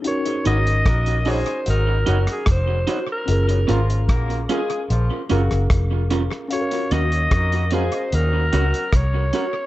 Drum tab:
HH |xxxxxxoxx-xxx-x-|xxxxxxxxx-xxx-x-|xxxxxxxxx-xxx-x-|
SD |----r------rr---|----r------rr--r|----r-------r---|
BD |----o-------o---|----o-------o---|----o-------o---|